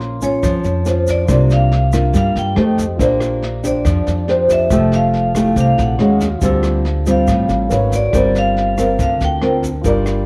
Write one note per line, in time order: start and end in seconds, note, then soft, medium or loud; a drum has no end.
0.00 0.39 A#1 medium
0.00 0.41 A#3 soft
0.00 0.18 C#4 soft
0.00 1.24 C#4 soft
0.00 0.18 F4 medium
0.00 1.24 F4 soft
0.00 1.25 A#4 soft
0.00 0.19 C5 medium
0.00 1.26 C6 medium
0.00 snare soft
0.22 0.83 C#4 medium
0.22 0.83 F4 soft
0.22 1.04 C#5 medium
0.22 kick soft
0.22 snare soft
0.22 shaker medium
0.43 0.63 F2 medium
0.43 1.27 F3 medium
0.43 kick medium
0.43 cross-stick soft
0.43 snare soft
0.43 shaker soft
0.64 1.25 F2 medium
0.64 snare soft
0.64 shaker soft
0.86 1.25 C#4 soft
0.86 1.26 F4 soft
0.86 1.26 C5 soft
0.86 snare soft
0.86 shaker soft
1.07 1.53 D5 medium
1.07 kick soft
1.07 snare soft
1.07 shaker medium
1.25 2.10 C2 medium
1.25 2.12 C3 soft
1.25 1.71 A#3 soft
1.25 1.71 D4 medium
1.25 2.53 F4 soft
1.25 2.54 G4 soft
1.25 2.55 A#4 soft
1.25 kick medium
1.25 cross-stick medium
1.25 snare soft
1.25 shaker medium
1.29 1.71 F4 medium
1.29 2.56 D5 soft
1.50 2.16 F5 medium
1.50 snare soft
1.50 shaker soft
1.71 snare soft
1.93 2.53 A#3 medium
1.93 2.54 D4 medium
1.93 2.54 F4 medium
1.93 kick soft
1.93 cross-stick medium
1.93 snare soft
1.93 shaker medium
2.13 2.34 G2 medium
2.13 2.54 G3 soft
2.13 2.38 F5 medium
2.13 kick soft
2.13 snare soft
2.13 shaker medium
2.35 2.55 G2 medium
2.35 2.77 G5 medium
2.35 snare soft
2.35 shaker soft
2.55 2.96 F2 medium
2.55 2.84 A3 medium
2.55 2.84 D#4 soft
2.55 2.96 G4 soft
2.55 2.85 G4 medium
2.55 2.99 A4 soft
2.55 2.99 C5 soft
2.55 3.00 D#5 medium
2.55 cross-stick medium
2.55 snare soft
2.78 kick soft
2.78 snare soft
2.78 shaker medium
2.96 3.81 A#1 medium
2.96 3.83 A#3 soft
2.96 3.42 D4 soft
2.96 4.44 F4 soft
2.96 4.46 G4 soft
2.96 3.42 G4 soft
2.96 kick medium
2.96 snare soft
3.00 4.47 C5 soft
3.00 3.43 C5 medium
3.00 4.48 D5 medium
3.00 shaker medium
3.20 cross-stick medium
3.20 snare soft
3.20 shaker soft
3.42 snare soft
3.63 4.24 D4 medium
3.63 4.25 G4 soft
3.63 4.25 C5 medium
3.63 4.53 D5 medium
3.63 kick soft
3.63 snare soft
3.63 shaker medium
3.85 4.05 F2 medium
3.85 4.69 F3 medium
3.85 kick medium
3.85 cross-stick medium
3.85 snare soft
3.85 shaker medium
4.06 4.67 F2 medium
4.06 snare soft
4.06 shaker soft
4.28 4.68 D4 soft
4.28 4.68 G4 soft
4.28 4.68 C5 medium
4.28 snare soft
4.47 4.70 F4 soft
4.47 4.66 G4 soft
4.47 4.70 C5 soft
4.47 4.71 D5 soft
4.47 kick soft
4.47 snare soft
4.47 shaker medium
4.52 4.95 E5 medium
4.68 5.52 F1 medium
4.68 5.54 F3 soft
4.68 5.95 G4 soft
4.68 5.96 A4 soft
4.68 5.97 C5 soft
4.68 kick medium
4.68 cross-stick medium
4.68 snare soft
4.68 shaker medium
4.72 5.32 A3 soft
4.72 5.32 G4 medium
4.72 5.98 E6 soft
4.92 5.59 F5 medium
4.92 snare soft
4.92 shaker soft
5.13 snare soft
5.35 5.96 A3 soft
5.35 5.96 E4 soft
5.35 5.96 G4 soft
5.35 kick soft
5.35 cross-stick medium
5.35 snare soft
5.35 shaker medium
5.56 5.76 C2 medium
5.56 5.97 C3 soft
5.56 kick medium
5.56 snare soft
5.56 shaker medium
5.60 5.80 F5 medium
5.78 5.98 A#1 medium
5.78 6.19 F#5 medium
5.78 snare soft
5.78 shaker soft
5.97 6.39 D#2 medium
5.97 6.27 G#3 soft
5.97 6.27 C#4 soft
5.97 6.41 F#4 soft
5.97 6.27 F#4 soft
5.97 6.42 G#4 soft
5.97 6.42 C#5 soft
5.97 6.43 F5 soft
5.97 cross-stick medium
5.97 snare soft
6.20 kick soft
6.20 snare soft
6.20 shaker medium
6.39 7.23 D2 medium
6.39 7.26 D3 soft
6.39 6.85 G3 soft
6.39 7.66 F4 soft
6.39 7.67 G4 soft
6.39 kick medium
6.39 snare soft
6.39 shaker medium
6.43 6.85 C4 soft
6.43 6.85 F4 medium
6.43 7.68 C5 soft
6.43 7.69 E6 medium
6.63 cross-stick medium
6.63 snare soft
6.63 shaker soft
6.85 snare soft
7.06 7.67 G3 soft
7.06 7.67 C4 medium
7.06 7.67 F4 medium
7.06 kick soft
7.06 snare soft
7.06 shaker medium
7.11 7.90 F5 medium
7.27 7.47 A1 medium
7.27 7.69 A2 soft
7.27 kick medium
7.27 cross-stick medium
7.27 snare soft
7.27 shaker soft
7.49 7.69 A1 medium
7.49 snare soft
7.49 shaker soft
7.69 8.10 G#1 medium
7.69 7.98 C#4 soft
7.69 8.12 F#4 medium
7.69 7.98 F#4 soft
7.69 8.13 A#4 medium
7.69 8.13 B4 soft
7.69 7.99 B4 medium
7.69 8.14 C#5 medium
7.69 snare soft
7.69 shaker soft
7.92 8.38 D5 medium
7.92 kick soft
7.92 snare soft
7.92 shaker medium
8.10 8.95 G1 medium
8.10 8.97 G3 soft
8.10 8.74 C4 soft
8.10 9.80 F4 soft
8.10 kick medium
8.10 cross-stick medium
8.10 snare soft
8.10 shaker medium
8.14 8.74 F4 soft
8.14 9.82 A#4 soft
8.14 8.75 A#4 medium
8.14 9.82 C5 soft
8.35 9.01 F5 medium
8.35 snare soft
8.35 shaker soft
8.57 snare soft
8.78 9.39 C4 soft
8.78 9.39 F4 soft
8.78 9.39 A#4 medium
8.78 kick soft
8.78 cross-stick medium
8.78 snare soft
8.78 shaker medium
8.99 9.19 D2 medium
8.99 9.82 D3 soft
8.99 9.23 F5 medium
8.99 kick medium
8.99 snare soft
8.99 shaker soft
9.21 9.81 D2 medium
9.21 9.62 G5 medium
9.21 snare soft
9.21 shaker soft
9.42 9.69 C4 soft
9.42 9.70 F4 medium
9.42 9.70 A#4 medium
9.42 cross-stick soft
9.42 snare soft
9.63 kick soft
9.63 snare soft
9.63 shaker medium
9.81 10.26 G1 medium
9.81 10.26 G3 soft
9.81 10.26 D4 soft
9.81 10.26 F4 soft
9.81 10.26 G4 soft
9.81 kick medium
9.81 snare soft
9.81 shaker medium
9.86 10.26 A#4 soft
9.86 10.26 A#4 medium
9.86 10.26 D5 medium
10.06 cross-stick medium
10.06 snare soft
10.06 shaker soft